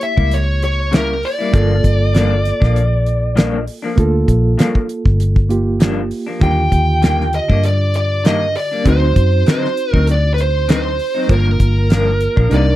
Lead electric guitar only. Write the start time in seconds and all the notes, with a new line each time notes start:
0.03 E5
0.34 C#5
0.64 C#5
0.95 A#4
1.25 D5
6.43 G5
7.35 D#5
7.66 D5
7.96 D5
8.27 D#5
8.57 D5
8.89 C5
9.50 C5
9.92 A#4
10.12 D5
10.34 B4
10.41 C5
10.72 C5
11.33 A#4
12.54 D5